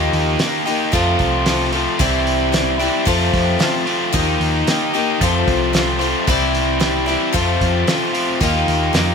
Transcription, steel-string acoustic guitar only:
Already playing: D#3 F3 A#3 D#4 G4 D#5
0.40 A#3 D#4 G4
0.44 D#5
0.66 A#3 D#4 G4 D#5
0.92 F3 C4 F4 A4 C5
1.46 C4 F4 A4 C5
1.72 F4 A4 C5
1.99 C4 E4 G4 D5
2.52 C4 E4 G4 D5
2.79 E4 G4 D5
3.05 F3 C4 F4 A4 C5
3.59 C4 F4 A4 C5
4.13 D#3 F3 A#3 D#4 G4 D#5
4.67 A#3 D#4 G4 D#5
4.94 A#3 D#4 G4 D#5
5.21 F3 C4 F4 A4 C5
5.73 C4 F4 A4
5.77 C5
5.99 F4 A4 C5
6.27 C4 E4 G4 D5
6.80 C4 E4 G4 D5
7.06 E4 G4 D5
7.33 F3 C4 F4 A4 C5
7.87 C4 F4 A4 C5
8.41 D#3 A#3 D#4 F4 G4
8.93 A#3 D#4 F4 G4

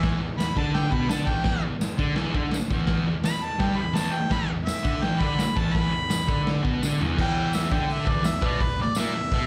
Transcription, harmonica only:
0.38 B5
0.57 A5
0.74 G5
0.93 B5
1.09 A5
1.27 G5
1.44 G5
3.25 B5
3.44 A5
3.61 G5
3.77 B5
3.95 A5
4.12 G5
4.31 B5
4.65 E5
5.03 G5
5.20 B5
5.57 A5
5.75 B5
7.21 G5
7.54 E5
7.72 G5
7.92 E5
8.09 D5
8.26 E5
8.46 D5
8.62 B4
8.81 D5
8.98 E5

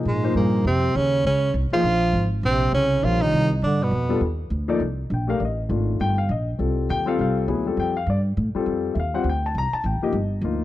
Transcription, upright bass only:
0.05 A#2
0.35 G2
0.64 F2
0.95 D#2
1.24 C#2
1.54 C2
1.71 muted upright bass stroke
1.83 A#1
2.13 G#1
2.43 A#1
2.73 C2
3.03 A#1
3.32 C2
3.62 G2
3.91 F2
4.20 D#2
4.50 D2
4.80 C2
5.10 A#1
5.40 A1
5.69 G#1
6.00 G1
6.29 A#1
6.59 C2
6.89 D#2
7.19 C2
7.48 D2
7.77 F2
8.06 G2
8.37 A2
8.55 muted upright bass stroke
8.66 F2
8.95 D#2
9.24 D2
9.55 C2
9.72 muted upright bass stroke
9.84 A1
10.01 muted upright bass stroke
10.12 G1
10.41 D2

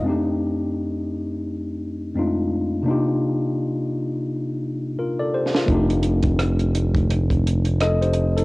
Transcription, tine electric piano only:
0.01 F2 G#3 C4
0.06 A3 D4 D#4 G4
2.14 F2 G#3 C4 D4 D#4
2.19 A3 F4
2.83 C3 A#3 D4
2.88 D#4 F4 G4
4.99 F4 A#4
5.19 A4 D5
5.34 G4 C5
5.56 F4 A#4
5.66 A3 C4 D4
5.72 D#4 G4
7.81 A4 D#5
8.02 G4 C5
8.37 D#4 A4

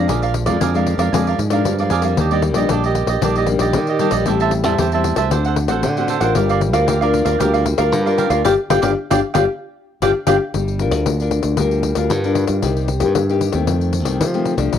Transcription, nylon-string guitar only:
Already playing: F3 G#3 D4
0.08 A#2
0.46 F3 G#3 D4
0.60 F2
0.74 F3 G#3 D4
0.98 F3 G#3 D4
1.13 A#2 F3 G#3 D4
1.50 F3 G#3 D4
1.65 F2
1.79 F3 G#3 D4
2.03 G3 A#3 D4
2.18 D#3
2.31 G3 A#3 D4
2.55 G3 A#3 D4
2.70 A#2 G3 A#3 D4
3.22 D#3 G3 A#3 D4
3.47 G3 A#3 D4
3.74 A#2
4.00 G3 A#3 D4
4.26 A2 G3 C4 E4
4.65 G3 C4 E4
4.79 E3
4.94 G3 C4 E4
5.17 A3 C4 F#4
5.32 D3
5.69 A3 C4 F#4
5.84 A2
5.98 A3 C4 F#4
6.22 D4 F4 A#4
6.37 G3
6.73 D4 F4 A#4
6.88 D3
7.02 D4 F4 A#4
7.26 D4 F4 A#4
7.41 G3 D4 F4 A#4
7.78 D4 F4 A#4
7.92 D3
8.06 D4 F4 A#4
8.30 D4 F4 A#4
8.45 D4 F4 G4
8.70 D4 F4 G4
8.82 D4 F4 G4
9.11 D4 F4 G4
9.34 D4 F4 G4
10.02 D4 F4 G4
10.28 D4 F4 G4
10.55 G3
10.80 D4 F4 A#4
11.06 D3
11.21 D4 F4 A#4
11.59 G3 D4 F4 A#4
11.96 D4 F4 A#4
12.11 D3
12.25 D4 F4 A#4
12.63 C3 A#3 D#4 G4
13.00 A#3 D#4 G4
13.15 G2
13.29 A#3 D#4 G4
13.53 D#3 A3 C4
13.68 F2
14.06 D#3 A3 C4
14.21 C3
14.34 D#3 A3 C4
14.58 F3 A3 D4
14.73 A#2

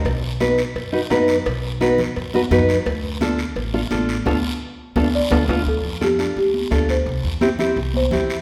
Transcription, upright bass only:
0.05 B1
0.75 F#2
1.10 F#2
1.46 B1
2.17 F#2
2.51 F#2
2.86 D2
3.56 A1
3.91 A1
4.26 D2
4.96 D2
5.31 D2
5.49 D2
5.66 D2
5.84 F2
6.36 D2
6.71 D2
7.06 C2
7.24 E2
7.76 C2
8.12 E2

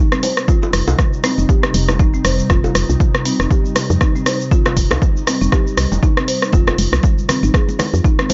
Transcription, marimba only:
Already playing: D#4
0.12 C4
0.23 C5
0.48 F4
0.63 F4
1.24 C4
1.38 D#4
1.49 G4
2.00 D#4
2.14 C4
2.25 C5
2.50 F4
2.64 F4
3.26 C4
3.40 D#4
3.51 G4
4.01 D#4
4.15 C4
4.26 C5
4.51 F4
4.66 F4
5.27 C4
5.41 D#4
5.52 G4
6.03 D#4
6.17 C4
6.28 C5
6.53 F4
6.67 F4
7.29 C4
7.43 D#4
7.54 G#4
8.04 D#4
8.19 C4
8.30 C5

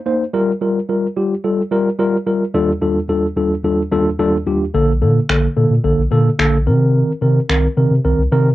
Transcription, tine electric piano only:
0.06 A#3 D#4 C5
0.34 G3 F4 A#4
0.61 G3 F4 A#4
0.89 G3 F4 A#4
1.16 G3 F4 G4
1.44 G3 F4 A4
1.71 G3 F4 A#4
1.99 G3 F4 A#4
2.26 G3 F4 A#4
2.54 D#2 G3 D4 F4 A4
2.81 D#2 G3 D4 F4 A4
3.09 D#2 G3 D4 F4 A4
3.36 D#2 G3 D4 F4 A4
3.64 D#2 G3 D4 F4 A4
3.91 D#2 G3 D4 F4 A4
4.19 D#2 G3 D4 F4 A4
4.46 D#2 G3 D4 F4 G4
4.74 D3 A#3 A4
5.02 D3 A#3 A4
5.29 D3 A#3 A4
5.56 D3 A#3 A4
5.84 D3 A#3 A4
6.12 D3 A#3 A4
6.39 D3 A#3 A4
6.67 D#3 C4 A#4
7.22 D#3 C4 A#4
7.49 D#3 C4 A#4
7.77 D#3 C4 A#4
8.04 D#3 C4 A#4
8.32 D#3 C4 A#4

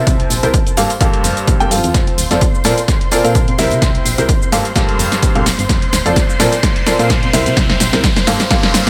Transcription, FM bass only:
0.07 C2
0.30 A#1
0.43 C2
0.77 G2
1.01 A#1
1.24 F1
1.47 A#1
1.71 G2
1.84 E2
1.94 F1
2.18 D1
2.31 F1
2.65 A#2
3.24 A#2
3.58 C2
3.71 C3
3.82 C2
4.05 A#1
4.18 C2
4.52 G2
4.76 A#1
4.99 F1
5.35 A#1
5.59 G1
5.69 F1
5.93 D1
6.06 F1
6.40 A#2
6.99 A#2
7.33 C2
7.46 C3
7.57 C2
7.80 A#1
7.93 C2
8.27 G2
8.87 C2

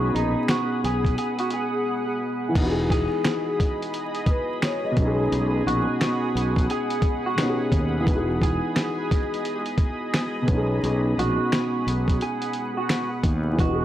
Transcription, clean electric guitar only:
Already playing: F#4
0.15 D#4
0.50 F#4
0.85 G#4
1.18 G#4
1.40 F#4
1.54 G#4
2.91 G#4
5.67 F#4
6.71 G#4
7.26 F#4
8.43 G#4
11.19 F#4
12.22 G#4
12.77 F#4
13.60 F#4

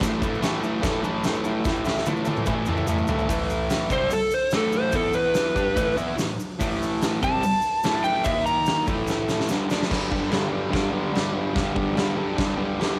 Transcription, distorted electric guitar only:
0.01 A2 E3 A3
0.22 A2 E3 A3
0.42 A2 E3 A3
0.62 A2 E3 A3
0.82 A2 E3 A3
1.03 A2 E3 A3
1.25 A2 E3 A3
1.45 A2 E3 A3
1.66 A2 E3 A3
1.85 A2 E3 A3
2.06 A2 E3 A3
2.26 A2 E3 A3
2.47 A2 E3 A3
2.68 A2 E3 A3
2.88 A2 E3 A3
3.09 A2 E3 A3
3.29 A2 E3 A3
3.90 C3 G3 C4
4.11 muted distorted electric guitar stroke
4.52 A2 E3 A3
4.93 E3 B3 E4
5.55 G3 D4 G4
5.75 A2 E3 A3
5.96 E3 B3 E4
6.17 A2 E3
6.59 A2 E3 A3
7.21 C3 G3 C4
7.42 muted distorted electric guitar stroke
7.84 A2 E3 A3
8.25 D#3 A#3 D#4
8.87 A2 E3 A3
9.49 G2 D3 G3
9.69 D3 A3 D4
9.90 G2 D3 G3
10.11 G2 D3 G3
10.31 G2 D3 G3
10.51 G2 D3 G3
10.70 G2 D3 G3
10.91 G2 D3 G3
11.12 G2 D3 G3
11.33 G2 D3 G3
11.54 G2 D3 G3
11.74 G2 D3 G3
11.96 G2 D3 G3
12.17 G2 D3 G3
12.37 G2 D3 G3
12.57 G2 D3 G3
12.79 G2 D3 G3

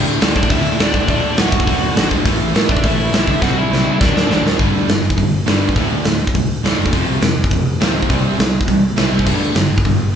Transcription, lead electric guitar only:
0.37 D4 D5
0.50 E4 E5
0.80 D4 D5
1.09 D4 D5
1.38 F#4 F#5
2.71 D4 D5
2.86 E4 E5
3.16 E4 E5
3.43 F#4 F#5
3.58 E4 E5
4.00 D4 D5

